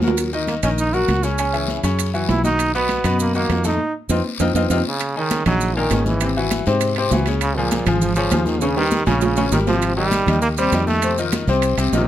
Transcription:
Already playing: fingered electric bass D#2
0.02 grand piano F#3 F#4 A#4, high conga, short guiro
0.08 low timbale
0.17 high conga, high timbale, long guiro, maracas
0.33 grand piano D#3 D#4 D#5, high conga, maracas
0.47 trombone A#3, high conga, high timbale, low timbale, short guiro, maracas
0.63 fingered electric bass A#1, grand piano D#3 D#4 D#5, trombone C#4, high conga, high timbale, short guiro, maracas
0.78 trombone D#4, high conga, long guiro, maracas
0.93 grand piano F#3 F#4 A#4, trombone F#4, high conga, maracas
1.08 fingered electric bass C#2, high conga, high timbale, low timbale, short guiro, maracas
1.23 grand piano C#3 C#4 C#5, trombone C#4, short guiro, maracas
1.38 grand piano C#3 C#4 C#5, high conga, high timbale, long guiro, maracas
1.53 grand piano E3 E4 G#4, high conga, high timbale, maracas
1.68 high conga, low timbale, short guiro, maracas
1.83 fingered electric bass F#2, grand piano C#3 C#4 C#5, high conga, high timbale, short guiro, maracas
1.99 high conga, high timbale, long guiro, maracas
2.14 grand piano E3 E4 F#4, high conga, maracas
2.29 fingered electric bass B1, trombone E4, high conga, high timbale, low timbale, short guiro, maracas
2.44 grand piano D#3 D#4 F#4, trombone D#4, high conga, short guiro, maracas
2.59 high conga, high timbale, long guiro, maracas
2.74 grand piano B2 B3 B4, trombone B3, high conga, maracas
2.89 high conga, high timbale, low timbale, short guiro, maracas
3.04 fingered electric bass F#2, grand piano B2 B3 B4, high conga, high timbale, short guiro, maracas
3.20 trombone A#3, high conga, long guiro, maracas
3.34 grand piano D#3 D#4 F#4, trombone A#3, high conga, maracas
3.50 fingered electric bass F2, high conga, high timbale, low timbale, short guiro, maracas
3.64 grand piano A2 A3 A4, trombone D#4, high conga, short guiro, maracas
4.09 fingered electric bass F2, grand piano C4 D#4 F4, high conga, high timbale, long guiro, maracas
4.39 fingered electric bass F2, grand piano C4 D#4 F4, high conga, high timbale, long guiro, maracas
4.55 fingered electric bass F2, grand piano C4 D#4 F4, high conga, high timbale, long guiro, maracas
4.70 fingered electric bass F2, trombone C3, grand piano C4 D#4 F4, high conga, high timbale, long guiro, maracas
4.88 trombone C#3
5.00 high conga, high timbale, long guiro, maracas
5.16 grand piano C#3 C#4 D#4, trombone D#3, high conga
5.30 high conga, high timbale, low timbale, short guiro, maracas
5.46 fingered electric bass A#1, grand piano C#3 C#4 D#4, trombone F#3, low conga, high timbale, short guiro, maracas
5.61 high conga, long guiro, maracas
5.76 grand piano A#2 A#3 A#4, trombone D#3, high conga
5.91 fingered electric bass G#1, grand piano C#3 C#4 D#4, high conga, high timbale, low timbale, short guiro, maracas
6.06 trombone E3, high conga, short guiro, maracas
6.21 grand piano C3 C4 C5, high conga, high timbale, long guiro, maracas
6.37 grand piano E3 E4 F#4, high conga
6.51 high conga, high timbale, low timbale, short guiro, maracas
6.66 fingered electric bass G#2, grand piano C3 C4 C5, short guiro, maracas
6.81 high conga, high timbale, long guiro, maracas
6.96 grand piano C3 C4 C5, high conga, high timbale
7.11 fingered electric bass C#2, grand piano E3 E4 F#4, high conga, low timbale, short guiro, maracas
7.26 grand piano C#3 C#4 C#5, high timbale, short guiro, maracas
7.41 trombone C#3, high conga, high timbale, long guiro, maracas
7.57 trombone A#2, grand piano F3 F4 G#4, high conga
7.71 high conga, high timbale, low timbale, short guiro, maracas
7.86 fingered electric bass G#1, grand piano F3 F4 G#4, trombone F3, low conga, high timbale, short guiro, maracas
8.02 trombone F3, high conga, low conga, long guiro, maracas
8.16 grand piano C#3 C#4 C#5, trombone F3, high conga, maracas
8.31 fingered electric bass D#2, grand piano F3 F4 G#4, high conga, high timbale, low timbale, short guiro, maracas
8.46 trombone D#3, high conga, short guiro, maracas
8.61 trombone C#3, grand piano C#3 C#4 C#5, high timbale, long guiro, maracas
8.77 trombone D#3, grand piano G3 G4 A#4, high conga, high timbale
8.91 high conga, short guiro, maracas
9.06 fingered electric bass A#1, grand piano C#3 C#4 C#5, trombone C#3, low timbale, short guiro, maracas
9.21 low timbale, long guiro, maracas
9.37 grand piano C#3 C#4 C#5, high conga, low timbale, maracas
9.52 fingered electric bass G#1, trombone D#3, grand piano G3 G4 A#4, high conga, low timbale, short guiro, maracas
9.67 grand piano C3 C4 C5, trombone F3, low timbale, short guiro, maracas
9.82 high conga, high timbale, long guiro, maracas
9.97 grand piano D#3 D#4 G4, trombone G3, high conga
10.12 high conga, high timbale, low timbale, short guiro, maracas
10.26 fingered electric bass D#2, grand piano D#3 D#4 G4, low conga, high timbale, short guiro, maracas
10.42 trombone A#3, long guiro, maracas
10.57 grand piano C3 C4 C5, trombone G3, high conga, maracas
10.72 fingered electric bass F2, grand piano D#3 D#4 G4, high conga, high timbale, low timbale, short guiro, maracas
10.87 trombone A3, high conga, short guiro, maracas
11.02 grand piano C3 C4 C5, high conga, high timbale, long guiro, maracas
11.18 grand piano D#3 D#4 F4, high conga, maracas
11.32 high conga, high timbale, low timbale, short guiro, maracas
11.47 fingered electric bass C2, grand piano C3 C4 C5, short guiro, maracas
11.62 high conga, high timbale, long guiro, maracas
11.78 fingered electric bass C2, grand piano C3 C4 C5, high conga, high timbale, maracas
11.93 fingered electric bass A#1, trombone C3, grand piano D#3 D#4 F4, high conga, low timbale, short guiro, maracas

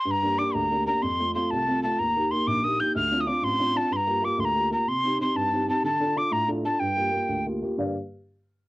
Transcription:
0.05 upright piano G2, tin whistle C6
0.11 tin whistle A#5
0.23 upright piano A#3 D4 G4
0.38 upright piano A#3 D4 G4, tin whistle D6
0.54 upright piano D2, tin whistle A#5
0.71 upright piano A#3 D4 G4
0.86 upright piano A#3 D4 G4, tin whistle A#5
1.02 upright piano F2, tin whistle C6
1.20 upright piano A3 C4 F4
1.34 upright piano A3 C4 F4, tin whistle C6
1.50 upright piano C2, tin whistle A5
1.68 upright piano A3 C4 F4
1.83 upright piano A3 C4 F4, tin whistle A5
1.99 upright piano D#2, tin whistle A#5
2.16 upright piano A#3 D#4 G4
2.31 upright piano A#3 D#4 G4, tin whistle C6
2.47 upright piano A#1, tin whistle D6
2.64 upright piano A#3 D#4 G4, tin whistle D#6
2.80 upright piano A#3 D#4 G4, tin whistle G6
2.95 upright piano D2, tin whistle F6
3.12 upright piano C4 D4 F4
3.20 tin whistle D#6
3.26 upright piano C4 D4 F4, tin whistle D6
3.42 upright piano A1, tin whistle C6
3.58 upright piano C4 D4 F4
3.74 upright piano C4 D4 F4, tin whistle A5
3.90 upright piano G2, tin whistle C6
3.96 tin whistle A#5
4.07 upright piano A#3 F4 G4
4.22 upright piano A#3 F4 G4, tin whistle D6
4.38 upright piano D2, tin whistle C6
4.45 tin whistle A#5
4.55 upright piano A#3 F4 G4
4.70 upright piano A#3 F4 G4, tin whistle A#5
4.87 upright piano C3, tin whistle C6
5.04 upright piano C4 D#4 G4
5.19 upright piano C4 D#4, tin whistle C6
5.35 upright piano G2, tin whistle A5
5.52 upright piano C4 D#4 G4
5.67 upright piano C4 D#4 G4, tin whistle A5
5.84 upright piano D3, tin whistle A5
6.00 upright piano D4 F4 A4
6.16 upright piano D4 F4 A4, tin whistle D6
6.31 upright piano A2, tin whistle A#5
6.48 upright piano D4 F4 A4
6.64 upright piano D4 F4 A4, tin whistle A5
6.80 upright piano G2, tin whistle G5
6.96 upright piano A#3 F4 G4
7.12 upright piano A#3 F4 G4
7.28 upright piano D2
7.46 upright piano A#3 F4 G4
7.62 upright piano A#3 F4 G4
7.77 upright piano G2 D3 A#3 G4 D5 F5

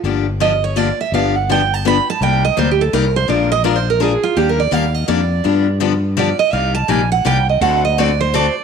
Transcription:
0.03 fretless electric bass G1, steel-string acoustic guitar D3 F3 A#3 D4 G4
0.40 steel-string acoustic guitar D3 F3 A#3 D4 G4 D#5
0.64 steel-string acoustic guitar C#5
0.76 steel-string acoustic guitar D3 F3 A#3 D4 G4 D5
1.01 steel-string acoustic guitar E5
1.12 fretless electric bass G1, steel-string acoustic guitar D3 F3 B3 D4 G4 F5
1.36 steel-string acoustic guitar F#5
1.49 steel-string acoustic guitar D3 F3 B3 D4 G4 G5
1.74 steel-string acoustic guitar A5
1.85 steel-string acoustic guitar D3 F3 B3 D4 G4 B5
2.10 steel-string acoustic guitar A5
2.21 fretless electric bass C2, steel-string acoustic guitar C3 G3 A#3 D#4 G4 G5
2.45 steel-string acoustic guitar D#5
2.57 fretless electric bass D2, steel-string acoustic guitar C3 G3 A#3 D#4 G4 C5
2.71 steel-string acoustic guitar G4
2.81 steel-string acoustic guitar A4
2.93 fretless electric bass C2, steel-string acoustic guitar C3 G3 A#3 D#4 G4 A#4
3.16 steel-string acoustic guitar C5
3.28 fretless electric bass A#1, steel-string acoustic guitar F3 G#3 D4 F4 A#4 D5
3.52 steel-string acoustic guitar D#5
3.64 steel-string acoustic guitar F3 G#3 D4 F4 A#4 D5
3.76 steel-string acoustic guitar C5
3.90 steel-string acoustic guitar A#4
4.00 steel-string acoustic guitar F3 G#3 D4 F4 G#4 A#4
4.23 steel-string acoustic guitar F4
4.36 fretless electric bass D#2, steel-string acoustic guitar D#3 G3 A#3 D4 G4
4.49 steel-string acoustic guitar A#4
4.60 steel-string acoustic guitar D5
4.71 fretless electric bass D#2, steel-string acoustic guitar D#3 G3 A#3 D4 G4 F5
4.95 steel-string acoustic guitar D#5
5.08 fretless electric bass F2, steel-string acoustic guitar D#3 G3 A#3 D4 G4 D5
5.44 fretless electric bass G2, steel-string acoustic guitar D3 F3 B3 D4 G4
5.80 steel-string acoustic guitar D3 F3 B3 D4 G4
6.17 steel-string acoustic guitar D3 F3 B3 D4 G4 D5
6.39 steel-string acoustic guitar D#5
6.53 fretless electric bass C2, steel-string acoustic guitar C3 G3 A#3 D#4 G4 F5
6.75 steel-string acoustic guitar A5
6.88 fretless electric bass A#1, steel-string acoustic guitar C3 G3 A#3 D#4 G4 G#5
7.12 steel-string acoustic guitar F#5
7.25 fretless electric bass C2, steel-string acoustic guitar C3 G3 A#3 D#4 G4 G5
7.49 steel-string acoustic guitar D#5
7.61 fretless electric bass D2, steel-string acoustic guitar D3 A3 C4 F#4 A4 F#5
7.85 steel-string acoustic guitar D#5
7.98 steel-string acoustic guitar D3 A3 C4 F#4 A4 D5
8.21 steel-string acoustic guitar C5
8.34 steel-string acoustic guitar D3 A3 C4 F#4 A4 D5

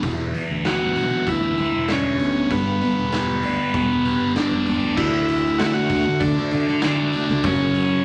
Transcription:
Already playing: distorted electric guitar B3 G4
0.03 fingered electric bass E1, distorted electric guitar E3, tonewheel organ G3 B4 E5, kick, open hi-hat
0.34 distorted electric guitar B3, open hi-hat
0.50 fingered electric bass D2
0.65 transistor combo organ F#4, distorted electric guitar G4, snare, open hi-hat
0.96 fingered electric bass B1, distorted electric guitar D4, open hi-hat
1.27 fingered electric bass D2, distorted electric guitar B3, transistor combo organ E4, kick, open hi-hat
1.58 distorted electric guitar G4, open hi-hat
1.74 fingered electric bass E1
1.88 transistor combo organ C#4, distorted electric guitar D4, snare, open hi-hat
2.19 fingered electric bass D2, distorted electric guitar B3, open hi-hat
2.50 fingered electric bass G1, distorted electric guitar G3, transistor combo organ B3, tonewheel organ G5, kick, open hi-hat
2.81 distorted electric guitar B3, open hi-hat
2.97 fingered electric bass E1
3.12 distorted electric guitar G4, snare, open hi-hat
3.43 fingered electric bass D2, distorted electric guitar D4, open hi-hat
3.74 fingered electric bass E1, distorted electric guitar B3, kick, open hi-hat
4.05 distorted electric guitar G4, open hi-hat
4.20 fingered electric bass G1
4.36 fingered electric bass G2, distorted electric guitar D4, transistor combo organ D4, snare, open hi-hat
4.52 fingered electric bass F#2
4.66 fingered electric bass E2, distorted electric guitar B3, open hi-hat
4.82 fingered electric bass D2
4.96 fingered electric bass D2, distorted electric guitar D3 A3 D4, transistor combo organ E4, tonewheel organ F#4 A4 D5 E5, kick, crash
5.28 open hi-hat
5.58 fingered electric bass A1, distorted electric guitar D3 A3 D4, transistor combo organ F#4, snare, open hi-hat
5.66 transistor combo organ E4
5.73 transistor combo organ F#4
5.90 fingered electric bass D2, distorted electric guitar D3 A3 D4, kick, open hi-hat
6.06 muted distorted electric guitar stroke
6.20 fingered electric bass D2, transistor combo organ D4, kick, open hi-hat
6.36 distorted electric guitar A3 D4
6.51 distorted electric guitar D3 A3 D4, fingered electric bass D3, open hi-hat
6.67 muted distorted electric guitar stroke, snare
6.82 distorted electric guitar D3 A3 D4, snare, open hi-hat
7.13 distorted electric guitar D3 A3 D4, open hi-hat
7.29 fingered electric bass C#2, distorted electric guitar A3 D4, snare
7.43 fingered electric bass F#2, distorted electric guitar F#2 C#3 F#3, transistor combo organ C#4, tonewheel organ A#4 C#5 F#5, kick, open hi-hat
7.75 open hi-hat

